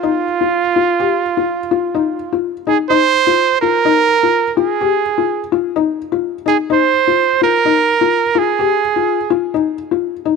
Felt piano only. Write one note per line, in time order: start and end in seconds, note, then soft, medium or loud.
0.03 0.24 D#4 medium
0.41 0.61 F4 medium
0.76 0.96 F4 medium
1.00 1.20 G4 medium
1.37 1.57 F4 medium
1.71 1.91 F4 medium
1.94 2.15 D#4 medium
2.33 2.52 F4 medium
2.67 2.87 D#4 medium
2.90 3.10 D#4 medium
3.27 3.47 F4 medium
3.62 3.82 F4 medium
3.85 4.05 D#4 medium
4.23 4.43 F4 medium
4.57 4.77 F4 medium
4.81 5.01 G4 medium
5.18 5.38 F4 medium
5.52 5.72 F4 medium
5.76 5.96 D#4 medium
6.12 6.32 F4 medium
6.46 6.66 D#4 medium
6.70 6.90 D#4 medium
7.07 7.28 F4 medium
7.41 7.62 F4 medium
7.65 7.85 D#4 medium
8.01 8.22 F4 medium
8.35 8.56 F4 medium
8.59 8.80 G4 medium
8.96 9.17 F4 soft
9.30 9.51 F4 medium
9.54 9.75 D#4 medium
9.91 10.12 F4 medium
10.25 10.36 D#4 medium